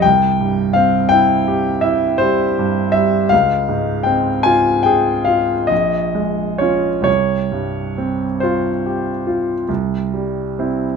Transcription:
\new Staff \with { instrumentName = "Grand piano" } { \time 9/8 \key c \phrygian \tempo 4. = 49 << { g''4 f''8 g''4 e''8 c''4 e''8 | f''4 g''8 aes''8 g''8 f''8 ees''4 des''8 | des''4. c''4. r4. | } \\ { c,8 g,8 c'8 e'8 g'8 e'8 g8 g,8 g8 | des,8 aes,8 c'8 f'8 aes'8 f'8 bes,,8 aes8 <des' f'>8 | c,8 g,8 c'8 f'8 g'8 f'8 c,8 g8 <c' e'>8 | } >> }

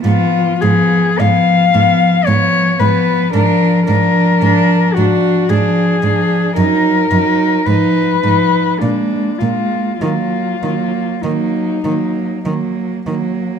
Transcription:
<<
  \new Staff \with { instrumentName = "Cello" } { \time 3/4 \key ees \minor \tempo 4 = 54 f'8 aes'8 f''4 des''8 ces''8 | bes'8 bes'4 ges'8 aes'4 | bes'4 ces''4 d'8 f'8 | f'4 ees'4 r4 | }
  \new Staff \with { instrumentName = "Cello" } { \time 3/4 \key ees \minor ces'8 ces'8 ces'8 ces'8 ces'8 ces'8 | d'8 d'8 d'8 d'8 d'8 d'8 | ees'8 ees'8 ees'8 ees'8 bes8 bes8 | bes8 bes8 bes8 bes8 bes8 bes8 | }
  \new Staff \with { instrumentName = "Cello" } { \clef bass \time 3/4 \key ees \minor f8 f8 f8 f8 f8 f8 | f8 f8 f8 f8 f8 f8 | ges8 ges8 f8 f8 aes8 aes8 | ges8 ges8 ges8 ges8 ges8 ges8 | }
  \new Staff \with { instrumentName = "Cello" } { \clef bass \time 3/4 \key ees \minor aes,8 aes,8 aes,8 aes,8 aes,8 aes,8 | aes,8 aes,8 aes,8 aes,8 aes,8 aes,8 | ges,8 ges,8 aes,8 aes,8 bes,8 bes,8 | ees8 ees8 ees8 ees8 ees8 ees8 | }
>>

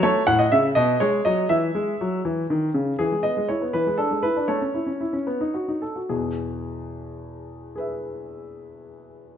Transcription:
<<
  \new Staff \with { instrumentName = "Grand piano" } { \time 6/8 \key e \major \tempo 4. = 79 << { cis''8 fis''16 dis''16 e''8 dis''8 cis''8 dis''8 | e''4. r4. | gis'8 dis''8 cis''8 b'8 a'8 b'8 | cis''2~ cis''8 r8 |
gis'2.~ | gis'2. | } \\ { r2. | r2. | r2. | r2. |
r2. | <gis' b' e''>2. | } >> }
  \new Staff \with { instrumentName = "Grand piano" } { \clef bass \time 6/8 \key e \major a8 a,8 cis8 b,8 gis8 fis8 | e8 gis8 fis8 e8 dis8 cis8 | e16 gis16 b16 gis16 e'16 b16 e16 gis16 d'16 gis16 e'16 d'16 | a16 cis'16 e'16 cis'16 e'16 cis'16 b16 dis'16 fis'16 dis'16 a'16 fis'16 |
<e, b,>2.~ | <e, b,>2. | }
>>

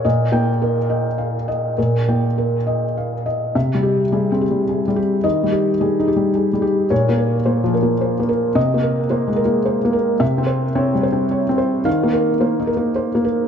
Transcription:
<<
  \new Staff \with { instrumentName = "Felt piano" } { \time 3/4 \key ees \mixolydian \tempo 4 = 108 << { r8 g''4 r4. | r2. | e''4 r2 | ees''4 r2 |
des''4 r2 | ees''4 r2 | e''4 r2 | f''4 r2 | } \\ { ees''4 bes'8 ees''8 f''8 ees''8 | bes'8 g''8 bes'8 ees''8 f''8 ees''8 | r8 g'8 aes'8 g'8 aes'8 g'8 | r8 g'8 aes'8 g'8 aes'8 g'8 |
r8 bes'8 c''8 bes'8 c''8 bes'8 | r8 bes'8 c''8 bes'8 c''8 bes'8 | r8 c''8 des''8 c''8 des''8 c''8 | r8 bes'8 c''8 bes'8 c''8 bes'8 | } >> }
  \new Staff \with { instrumentName = "Felt piano" } { \time 3/4 \key ees \mixolydian bes,8 bes4 r4. | bes,8 bes4 r4. | \tuplet 3/2 { c8 g4 g8 c'8 g8~ g8 g4 } | \tuplet 3/2 { ees8 g4 g8 ees'8 g8~ g8 g4 } |
\tuplet 3/2 { bes,8 bes4 bes8 f8 bes8~ bes8 bes4 } | \tuplet 3/2 { c8 bes4 bes8 aes8 bes8~ bes8 bes4 } | \tuplet 3/2 { c8 c'4 c'8 g8 c'8~ c'8 c'4 } | \tuplet 3/2 { ees8 bes4 bes8 ees'8 bes8~ bes8 bes4 } | }
>>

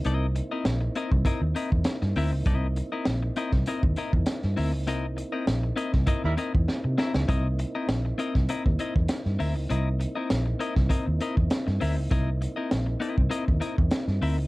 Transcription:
<<
  \new Staff \with { instrumentName = "Clean electric guitar" } { \time 4/4 \key c \mixolydian \tempo 4 = 100 <c' e' bes' dis''>16 r8 <c' e' bes' dis''>16 r8 <c' e' bes' dis''>16 r16 <c' e' bes' dis''>16 r16 <c' e' bes' dis''>16 r8. <c' e' bes' e''>16 r16 | <c' e' bes' dis''>16 r8 <c' e' bes' dis''>16 r8 <c' e' bes' dis''>16 r16 <c' e' bes' dis''>16 r16 <c' e' bes' dis''>16 r8. <c' e' bes' e''>16 r16 | <c' e' bes' dis''>16 r8 <c' e' bes' dis''>16 r8 <c' e' bes' dis''>16 r16 <c' e' bes' dis''>16 r16 <c' e' bes' dis''>16 r8. <c' e' bes' e''>16 r16 | <c' e' bes' dis''>16 r8 <c' e' bes' dis''>16 r8 <c' e' bes' dis''>16 r16 <c' e' bes' dis''>16 r16 <c' e' bes' dis''>16 r8. <c' e' bes' e''>16 r16 |
<c' e' bes' dis''>16 r8 <c' e' bes' dis''>16 r8 <c' e' bes' dis''>16 r16 <c' e' bes' dis''>16 r16 <c' e' bes' dis''>16 r8. <c' e' bes' e''>16 r16 | <c' e' bes' dis''>16 r8 <c' e' bes' dis''>16 r8 <c' e' bes' dis''>16 r16 <c' e' bes' dis''>16 r16 <c' e' bes' dis''>16 r8. <c' e' bes' e''>16 r16 | }
  \new Staff \with { instrumentName = "Horn section" } { \time 4/4 \key c \mixolydian r1 | r1 | r2 r16 <g e' bes'>16 r4. | r1 |
r1 | r1 | }
  \new Staff \with { instrumentName = "Tonewheel organ" } { \time 4/4 \key c \mixolydian <bes c' dis' e'>1~ | <bes c' dis' e'>1~ | <bes c' dis' e'>1~ | <bes c' dis' e'>1~ |
<bes c' dis' e'>1~ | <bes c' dis' e'>1 | }
  \new Staff \with { instrumentName = "Fingered electric bass" } { \clef bass \time 4/4 \key c \mixolydian c,8. r16 bes,,8 r16 c,16 r16 dis,16 r16 e,16 r16 g,16 d,16 des,16 | c,8. r16 bes,,8 r16 c,16 r16 dis,16 r16 e,16 r16 g,16 d,16 des,16 | c,8. r16 bes,,8 r16 c,16 r16 dis,16 r16 e,16 r16 c16 r16 des,16 | c,8. r16 bes,,8 r16 c,16 r16 dis,16 r16 e,16 r16 g,16 d,16 des,16 |
c,8. r16 bes,,8 r16 c,16 r16 dis,16 r16 e,16 r16 g,16 d,16 des,16 | c,8. r16 bes,,8 r16 c,16 r16 dis,16 r16 e,16 r16 g,16 d,16 des,16 | }
  \new DrumStaff \with { instrumentName = "Drums" } \drummode { \time 4/4 hh8 hh8 <hh sn>8 hh16 bd16 <hh bd>8 hh16 bd16 <hh sn>16 sn16 hho8 | <hh bd>8 hh8 <hh sn>8 hh16 <bd sn>16 hh16 bd16 hh16 bd16 <hh sn>16 sn16 hho8 | hh8 hh8 <hh sn>8 hh16 <bd sn>16 <hh bd>8 hh16 bd16 sn8 sn16 sn16 | <hh bd>8 hh8 <hh sn>8 hh16 <bd sn>16 hh16 bd16 hh16 bd16 <hh sn>16 sn16 hho8 |
hh8 hh8 <hh sn>8 hh16 <bd sn>16 <hh bd>8 hh16 bd16 <hh sn>16 sn16 hho8 | <hh bd>8 hh8 <hh sn>8 hh16 bd16 hh16 bd16 hh16 bd16 <hh sn>16 sn16 hho8 | }
>>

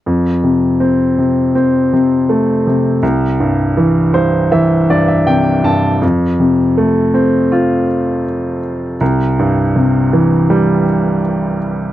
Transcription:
<<
  \new Staff \with { instrumentName = "Grand piano" } { \time 4/4 \key f \lydian \tempo 4 = 81 r1 | r4. c''8 e''8 d''16 e''16 g''8 a''8 | r1 | r1 | }
  \new Staff \with { instrumentName = "Grand piano" } { \clef bass \time 4/4 \key f \lydian f,8 c8 c'8 c8 c'8 c8 a8 c8 | c,8 g,8 e8 g,8 e8 g,8 c8 g,8 | f,8 c8 a8 c'8 f'2 | c,8 g,8 c8 e8 g2 | }
>>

